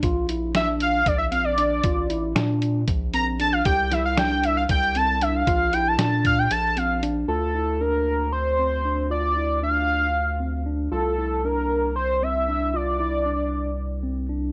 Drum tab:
HH |xxxxxxx|xxxxxxx|xxxxxxx|xxxxxxx|
SD |--o----|--o----|-oo----|--o----|
BD |o---o--|o---o--|o---o--|o--o---|

HH |-------|-------|-------|-------|
SD |-------|-------|-------|-------|
BD |-------|-------|-------|-------|